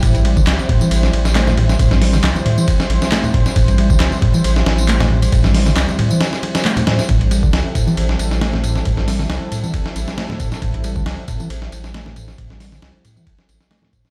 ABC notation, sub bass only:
X:1
M:4/4
L:1/8
Q:"Swing 16ths" 1/4=136
K:Am
V:1 name="Sub bass" clef=bass
A,,,2 C,, z A,,, A,,,3 | A,,,2 C,, z2 A,,, z2 | A,,,2 C,, z A,,, A,,,3 | A,,,2 C,, z4 z |
A,,,2 C,, z A,,, A,,,3 | A,,,2 C,, z2 A,,, z2 | A,,,2 C,, z A,,, A,,,3 | A,,,2 C,, z2 A,,, z2 |]